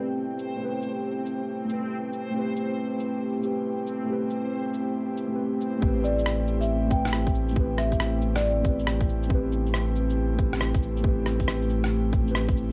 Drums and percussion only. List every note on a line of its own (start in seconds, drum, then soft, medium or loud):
0.39 cabasa medium
0.82 cabasa medium
1.26 cabasa medium
1.69 cabasa medium
2.13 cabasa medium
2.56 cabasa medium
3.00 cabasa medium
3.43 cabasa medium
3.87 cabasa medium
4.30 cabasa medium
4.74 cabasa medium
5.17 cabasa medium
5.61 cabasa medium
5.82 kick loud
6.04 cabasa medium
6.18 shaker medium
6.26 cross-stick loud
6.48 cabasa medium
6.62 shaker medium
6.91 kick loud
6.91 cabasa medium
7.05 cross-stick medium
7.05 shaker medium
7.13 cross-stick loud
7.27 kick loud
7.27 shaker soft
7.35 cabasa medium
7.49 shaker medium
7.56 kick loud
7.78 cross-stick medium
7.78 cabasa medium
7.92 kick medium
7.92 shaker medium
8.00 cross-stick loud
8.22 cabasa medium
8.36 cross-stick medium
8.36 shaker medium
8.65 kick loud
8.65 cabasa medium
8.79 shaker medium
8.87 cross-stick loud
9.01 kick loud
9.01 shaker soft
9.09 cabasa medium
9.23 shaker medium
9.30 kick loud
9.52 cabasa medium
9.66 shaker medium
9.74 cross-stick loud
9.96 cabasa medium
10.10 shaker medium
10.39 kick loud
10.39 cabasa medium
10.53 cross-stick medium
10.53 shaker medium
10.61 cross-stick loud
10.75 kick loud
10.75 shaker soft
10.83 cabasa medium
10.97 shaker medium
11.04 kick loud
11.26 cross-stick medium
11.26 cabasa medium
11.40 kick medium
11.40 shaker medium
11.48 cross-stick loud
11.62 shaker soft
11.70 cabasa medium
11.84 cross-stick medium
11.84 shaker medium
12.13 kick loud
12.13 cabasa medium
12.27 shaker medium
12.35 cross-stick loud
12.49 kick loud
12.49 shaker soft
12.57 cabasa medium